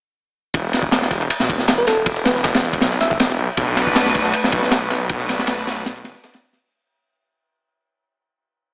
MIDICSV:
0, 0, Header, 1, 5, 480
1, 0, Start_track
1, 0, Tempo, 379747
1, 685, Time_signature, 4, 2, 24, 8
1, 11046, End_track
2, 0, Start_track
2, 0, Title_t, "FM electric piano"
2, 0, Program_c, 0, 5
2, 2247, Note_on_c, 0, 71, 87
2, 2340, Note_off_c, 0, 71, 0
2, 2362, Note_on_c, 0, 69, 93
2, 2654, Note_off_c, 0, 69, 0
2, 2840, Note_on_c, 0, 71, 90
2, 2924, Note_off_c, 0, 71, 0
2, 2965, Note_on_c, 0, 71, 72
2, 3041, Note_off_c, 0, 71, 0
2, 3799, Note_on_c, 0, 76, 98
2, 3883, Note_off_c, 0, 76, 0
2, 3923, Note_on_c, 0, 76, 76
2, 4000, Note_off_c, 0, 76, 0
2, 11046, End_track
3, 0, Start_track
3, 0, Title_t, "String section"
3, 0, Program_c, 1, 48
3, 4525, Note_on_c, 1, 66, 105
3, 4525, Note_on_c, 1, 71, 122
3, 4527, Note_on_c, 1, 57, 113
3, 4527, Note_on_c, 1, 62, 101
3, 5698, Note_off_c, 1, 66, 0
3, 5698, Note_off_c, 1, 71, 0
3, 5699, Note_off_c, 1, 57, 0
3, 5699, Note_off_c, 1, 62, 0
3, 5720, Note_on_c, 1, 71, 94
3, 5721, Note_on_c, 1, 66, 76
3, 5722, Note_on_c, 1, 57, 87
3, 5723, Note_on_c, 1, 62, 77
3, 6416, Note_off_c, 1, 57, 0
3, 6416, Note_off_c, 1, 66, 0
3, 6416, Note_off_c, 1, 71, 0
3, 6417, Note_off_c, 1, 62, 0
3, 6433, Note_on_c, 1, 66, 103
3, 6433, Note_on_c, 1, 71, 121
3, 6435, Note_on_c, 1, 62, 99
3, 6437, Note_on_c, 1, 57, 113
3, 7612, Note_off_c, 1, 66, 0
3, 7612, Note_off_c, 1, 71, 0
3, 7613, Note_off_c, 1, 62, 0
3, 7614, Note_off_c, 1, 57, 0
3, 7639, Note_on_c, 1, 57, 89
3, 7641, Note_on_c, 1, 62, 83
3, 7643, Note_on_c, 1, 66, 77
3, 7643, Note_on_c, 1, 71, 91
3, 8335, Note_off_c, 1, 57, 0
3, 8336, Note_off_c, 1, 62, 0
3, 8337, Note_off_c, 1, 66, 0
3, 8337, Note_off_c, 1, 71, 0
3, 11046, End_track
4, 0, Start_track
4, 0, Title_t, "Detuned saw bass"
4, 0, Program_c, 2, 39
4, 682, Note_on_c, 2, 28, 92
4, 1625, Note_off_c, 2, 28, 0
4, 1771, Note_on_c, 2, 35, 83
4, 1874, Note_off_c, 2, 35, 0
4, 1882, Note_on_c, 2, 28, 90
4, 2586, Note_off_c, 2, 28, 0
4, 2604, Note_on_c, 2, 28, 93
4, 3546, Note_off_c, 2, 28, 0
4, 3561, Note_on_c, 2, 35, 80
4, 3780, Note_off_c, 2, 35, 0
4, 3803, Note_on_c, 2, 28, 101
4, 4266, Note_off_c, 2, 28, 0
4, 4283, Note_on_c, 2, 35, 94
4, 4398, Note_off_c, 2, 35, 0
4, 4520, Note_on_c, 2, 35, 97
4, 5464, Note_off_c, 2, 35, 0
4, 5609, Note_on_c, 2, 30, 83
4, 5713, Note_off_c, 2, 30, 0
4, 5722, Note_on_c, 2, 35, 89
4, 6425, Note_off_c, 2, 35, 0
4, 6443, Note_on_c, 2, 35, 95
4, 7386, Note_off_c, 2, 35, 0
4, 7403, Note_on_c, 2, 35, 90
4, 7622, Note_off_c, 2, 35, 0
4, 7643, Note_on_c, 2, 30, 103
4, 7758, Note_off_c, 2, 30, 0
4, 11046, End_track
5, 0, Start_track
5, 0, Title_t, "Drums"
5, 683, Note_on_c, 9, 54, 88
5, 684, Note_on_c, 9, 36, 113
5, 686, Note_on_c, 9, 51, 95
5, 809, Note_off_c, 9, 54, 0
5, 810, Note_off_c, 9, 36, 0
5, 812, Note_off_c, 9, 51, 0
5, 923, Note_on_c, 9, 51, 66
5, 926, Note_on_c, 9, 54, 71
5, 931, Note_on_c, 9, 38, 47
5, 1042, Note_on_c, 9, 36, 96
5, 1049, Note_off_c, 9, 51, 0
5, 1052, Note_off_c, 9, 54, 0
5, 1058, Note_off_c, 9, 38, 0
5, 1163, Note_on_c, 9, 38, 112
5, 1164, Note_off_c, 9, 38, 0
5, 1164, Note_on_c, 9, 38, 127
5, 1164, Note_on_c, 9, 54, 93
5, 1169, Note_off_c, 9, 36, 0
5, 1170, Note_on_c, 9, 51, 91
5, 1285, Note_off_c, 9, 38, 0
5, 1285, Note_on_c, 9, 38, 61
5, 1290, Note_off_c, 9, 54, 0
5, 1297, Note_off_c, 9, 51, 0
5, 1400, Note_on_c, 9, 36, 92
5, 1400, Note_on_c, 9, 51, 62
5, 1404, Note_on_c, 9, 54, 68
5, 1411, Note_off_c, 9, 38, 0
5, 1526, Note_off_c, 9, 51, 0
5, 1527, Note_off_c, 9, 36, 0
5, 1529, Note_on_c, 9, 38, 56
5, 1530, Note_off_c, 9, 54, 0
5, 1540, Note_on_c, 9, 51, 42
5, 1642, Note_on_c, 9, 54, 88
5, 1644, Note_off_c, 9, 51, 0
5, 1644, Note_on_c, 9, 51, 93
5, 1655, Note_off_c, 9, 38, 0
5, 1766, Note_on_c, 9, 38, 52
5, 1768, Note_off_c, 9, 54, 0
5, 1771, Note_off_c, 9, 51, 0
5, 1882, Note_on_c, 9, 54, 71
5, 1884, Note_on_c, 9, 36, 88
5, 1890, Note_on_c, 9, 51, 65
5, 1893, Note_off_c, 9, 38, 0
5, 2002, Note_on_c, 9, 38, 48
5, 2008, Note_off_c, 9, 54, 0
5, 2010, Note_off_c, 9, 36, 0
5, 2016, Note_off_c, 9, 51, 0
5, 2122, Note_off_c, 9, 38, 0
5, 2122, Note_on_c, 9, 38, 117
5, 2122, Note_on_c, 9, 54, 90
5, 2126, Note_on_c, 9, 51, 97
5, 2127, Note_off_c, 9, 38, 0
5, 2127, Note_on_c, 9, 38, 119
5, 2248, Note_off_c, 9, 54, 0
5, 2253, Note_off_c, 9, 51, 0
5, 2254, Note_off_c, 9, 38, 0
5, 2363, Note_on_c, 9, 38, 41
5, 2363, Note_on_c, 9, 54, 72
5, 2368, Note_on_c, 9, 51, 68
5, 2375, Note_off_c, 9, 38, 0
5, 2375, Note_on_c, 9, 38, 41
5, 2489, Note_off_c, 9, 54, 0
5, 2495, Note_off_c, 9, 51, 0
5, 2501, Note_off_c, 9, 38, 0
5, 2603, Note_on_c, 9, 51, 96
5, 2603, Note_on_c, 9, 54, 91
5, 2605, Note_on_c, 9, 36, 123
5, 2729, Note_off_c, 9, 51, 0
5, 2729, Note_off_c, 9, 54, 0
5, 2731, Note_off_c, 9, 36, 0
5, 2732, Note_on_c, 9, 38, 59
5, 2845, Note_on_c, 9, 54, 74
5, 2848, Note_on_c, 9, 51, 80
5, 2851, Note_off_c, 9, 38, 0
5, 2851, Note_on_c, 9, 38, 103
5, 2971, Note_off_c, 9, 54, 0
5, 2974, Note_off_c, 9, 51, 0
5, 2976, Note_off_c, 9, 38, 0
5, 2976, Note_on_c, 9, 38, 40
5, 3081, Note_on_c, 9, 51, 64
5, 3085, Note_off_c, 9, 38, 0
5, 3085, Note_on_c, 9, 38, 127
5, 3085, Note_on_c, 9, 54, 94
5, 3093, Note_on_c, 9, 36, 81
5, 3208, Note_off_c, 9, 51, 0
5, 3211, Note_off_c, 9, 38, 0
5, 3211, Note_off_c, 9, 54, 0
5, 3216, Note_on_c, 9, 51, 76
5, 3219, Note_off_c, 9, 36, 0
5, 3220, Note_on_c, 9, 38, 108
5, 3323, Note_on_c, 9, 54, 67
5, 3324, Note_off_c, 9, 38, 0
5, 3324, Note_on_c, 9, 38, 37
5, 3342, Note_off_c, 9, 51, 0
5, 3449, Note_on_c, 9, 36, 76
5, 3450, Note_off_c, 9, 54, 0
5, 3451, Note_off_c, 9, 38, 0
5, 3453, Note_on_c, 9, 51, 59
5, 3555, Note_on_c, 9, 38, 106
5, 3562, Note_off_c, 9, 51, 0
5, 3562, Note_on_c, 9, 51, 81
5, 3564, Note_on_c, 9, 54, 83
5, 3575, Note_off_c, 9, 36, 0
5, 3681, Note_off_c, 9, 38, 0
5, 3686, Note_on_c, 9, 38, 38
5, 3688, Note_off_c, 9, 51, 0
5, 3690, Note_on_c, 9, 42, 43
5, 3691, Note_off_c, 9, 54, 0
5, 3798, Note_on_c, 9, 51, 60
5, 3804, Note_off_c, 9, 38, 0
5, 3804, Note_on_c, 9, 38, 41
5, 3804, Note_on_c, 9, 54, 73
5, 3817, Note_off_c, 9, 42, 0
5, 3925, Note_off_c, 9, 51, 0
5, 3929, Note_off_c, 9, 38, 0
5, 3929, Note_on_c, 9, 38, 45
5, 3930, Note_off_c, 9, 54, 0
5, 3934, Note_on_c, 9, 36, 82
5, 4042, Note_off_c, 9, 38, 0
5, 4042, Note_on_c, 9, 38, 119
5, 4042, Note_on_c, 9, 54, 92
5, 4044, Note_on_c, 9, 51, 91
5, 4045, Note_off_c, 9, 38, 0
5, 4045, Note_on_c, 9, 38, 123
5, 4060, Note_off_c, 9, 36, 0
5, 4168, Note_off_c, 9, 54, 0
5, 4169, Note_off_c, 9, 38, 0
5, 4169, Note_on_c, 9, 38, 41
5, 4170, Note_off_c, 9, 51, 0
5, 4170, Note_on_c, 9, 42, 45
5, 4284, Note_on_c, 9, 54, 70
5, 4296, Note_off_c, 9, 38, 0
5, 4296, Note_off_c, 9, 42, 0
5, 4410, Note_off_c, 9, 54, 0
5, 4513, Note_on_c, 9, 51, 79
5, 4519, Note_on_c, 9, 36, 118
5, 4522, Note_on_c, 9, 54, 89
5, 4640, Note_off_c, 9, 51, 0
5, 4645, Note_off_c, 9, 36, 0
5, 4649, Note_off_c, 9, 54, 0
5, 4757, Note_on_c, 9, 38, 44
5, 4763, Note_on_c, 9, 54, 72
5, 4764, Note_on_c, 9, 51, 64
5, 4883, Note_off_c, 9, 38, 0
5, 4889, Note_off_c, 9, 54, 0
5, 4890, Note_off_c, 9, 51, 0
5, 4890, Note_on_c, 9, 36, 89
5, 5000, Note_on_c, 9, 38, 117
5, 5001, Note_on_c, 9, 51, 96
5, 5004, Note_off_c, 9, 38, 0
5, 5004, Note_on_c, 9, 38, 125
5, 5004, Note_on_c, 9, 54, 96
5, 5016, Note_off_c, 9, 36, 0
5, 5127, Note_off_c, 9, 51, 0
5, 5130, Note_off_c, 9, 38, 0
5, 5130, Note_off_c, 9, 54, 0
5, 5130, Note_on_c, 9, 38, 65
5, 5240, Note_on_c, 9, 51, 70
5, 5245, Note_on_c, 9, 54, 66
5, 5246, Note_on_c, 9, 36, 97
5, 5256, Note_off_c, 9, 38, 0
5, 5367, Note_off_c, 9, 51, 0
5, 5370, Note_on_c, 9, 38, 60
5, 5371, Note_off_c, 9, 54, 0
5, 5373, Note_off_c, 9, 36, 0
5, 5373, Note_on_c, 9, 51, 46
5, 5476, Note_off_c, 9, 51, 0
5, 5476, Note_on_c, 9, 51, 93
5, 5483, Note_on_c, 9, 54, 85
5, 5496, Note_off_c, 9, 38, 0
5, 5602, Note_off_c, 9, 51, 0
5, 5609, Note_on_c, 9, 38, 51
5, 5610, Note_off_c, 9, 54, 0
5, 5715, Note_on_c, 9, 51, 72
5, 5722, Note_on_c, 9, 36, 103
5, 5722, Note_on_c, 9, 54, 70
5, 5735, Note_off_c, 9, 38, 0
5, 5842, Note_off_c, 9, 51, 0
5, 5844, Note_on_c, 9, 38, 49
5, 5849, Note_off_c, 9, 36, 0
5, 5849, Note_off_c, 9, 54, 0
5, 5958, Note_on_c, 9, 51, 91
5, 5959, Note_off_c, 9, 38, 0
5, 5959, Note_on_c, 9, 38, 121
5, 5962, Note_off_c, 9, 38, 0
5, 5962, Note_on_c, 9, 38, 116
5, 5962, Note_on_c, 9, 54, 94
5, 6084, Note_off_c, 9, 51, 0
5, 6088, Note_off_c, 9, 38, 0
5, 6088, Note_off_c, 9, 54, 0
5, 6197, Note_on_c, 9, 51, 69
5, 6202, Note_on_c, 9, 38, 43
5, 6202, Note_on_c, 9, 54, 68
5, 6206, Note_off_c, 9, 38, 0
5, 6206, Note_on_c, 9, 38, 44
5, 6323, Note_off_c, 9, 51, 0
5, 6329, Note_off_c, 9, 54, 0
5, 6333, Note_off_c, 9, 38, 0
5, 6436, Note_on_c, 9, 51, 96
5, 6442, Note_on_c, 9, 54, 91
5, 6444, Note_on_c, 9, 36, 103
5, 6563, Note_off_c, 9, 51, 0
5, 6568, Note_off_c, 9, 54, 0
5, 6570, Note_off_c, 9, 36, 0
5, 6570, Note_on_c, 9, 38, 55
5, 6683, Note_on_c, 9, 54, 73
5, 6685, Note_on_c, 9, 51, 68
5, 6691, Note_off_c, 9, 38, 0
5, 6691, Note_on_c, 9, 38, 51
5, 6809, Note_off_c, 9, 54, 0
5, 6811, Note_off_c, 9, 38, 0
5, 6811, Note_off_c, 9, 51, 0
5, 6811, Note_on_c, 9, 38, 60
5, 6913, Note_on_c, 9, 51, 90
5, 6922, Note_off_c, 9, 38, 0
5, 6922, Note_on_c, 9, 38, 127
5, 6922, Note_on_c, 9, 54, 93
5, 6923, Note_off_c, 9, 38, 0
5, 6923, Note_on_c, 9, 38, 110
5, 7039, Note_off_c, 9, 51, 0
5, 7048, Note_off_c, 9, 54, 0
5, 7049, Note_off_c, 9, 38, 0
5, 7049, Note_on_c, 9, 38, 43
5, 7162, Note_on_c, 9, 54, 70
5, 7165, Note_off_c, 9, 38, 0
5, 7165, Note_on_c, 9, 38, 57
5, 7173, Note_on_c, 9, 46, 80
5, 7288, Note_off_c, 9, 54, 0
5, 7291, Note_off_c, 9, 38, 0
5, 7299, Note_off_c, 9, 46, 0
5, 7404, Note_on_c, 9, 54, 86
5, 7406, Note_on_c, 9, 38, 118
5, 7408, Note_on_c, 9, 51, 88
5, 7530, Note_off_c, 9, 54, 0
5, 7530, Note_on_c, 9, 42, 44
5, 7533, Note_off_c, 9, 38, 0
5, 7534, Note_off_c, 9, 51, 0
5, 7534, Note_on_c, 9, 38, 52
5, 7636, Note_off_c, 9, 38, 0
5, 7636, Note_on_c, 9, 38, 97
5, 7645, Note_on_c, 9, 51, 82
5, 7645, Note_on_c, 9, 54, 76
5, 7656, Note_off_c, 9, 42, 0
5, 7762, Note_off_c, 9, 38, 0
5, 7769, Note_on_c, 9, 38, 40
5, 7771, Note_off_c, 9, 38, 0
5, 7771, Note_off_c, 9, 51, 0
5, 7771, Note_off_c, 9, 54, 0
5, 7771, Note_on_c, 9, 38, 46
5, 7882, Note_off_c, 9, 38, 0
5, 7882, Note_on_c, 9, 38, 118
5, 7882, Note_on_c, 9, 54, 93
5, 7887, Note_on_c, 9, 46, 71
5, 7889, Note_off_c, 9, 38, 0
5, 7889, Note_on_c, 9, 38, 52
5, 8007, Note_on_c, 9, 51, 73
5, 8009, Note_off_c, 9, 54, 0
5, 8011, Note_on_c, 9, 42, 46
5, 8014, Note_off_c, 9, 46, 0
5, 8015, Note_off_c, 9, 38, 0
5, 8021, Note_on_c, 9, 38, 105
5, 8124, Note_on_c, 9, 54, 69
5, 8130, Note_off_c, 9, 38, 0
5, 8130, Note_on_c, 9, 38, 43
5, 8134, Note_off_c, 9, 51, 0
5, 8137, Note_off_c, 9, 42, 0
5, 8250, Note_off_c, 9, 38, 0
5, 8250, Note_on_c, 9, 38, 51
5, 8251, Note_off_c, 9, 54, 0
5, 8252, Note_on_c, 9, 46, 73
5, 8377, Note_off_c, 9, 38, 0
5, 8378, Note_off_c, 9, 46, 0
5, 11046, End_track
0, 0, End_of_file